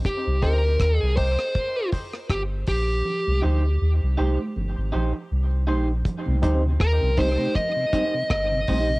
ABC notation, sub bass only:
X:1
M:4/4
L:1/16
Q:"Swing 16ths" 1/4=80
K:Cm
V:1 name="Sub bass" clef=bass
z C,, D,,2 E,, C,, C,, z4 z G,,,2 B,,,2 | z C,, D,,2 E,, C,, C,, z G,,, A,,, B,,, z C,,2 B,,,2 | z C,, D,,2 E,, C,, C,, z4 z G,,,2 B,,,2 |]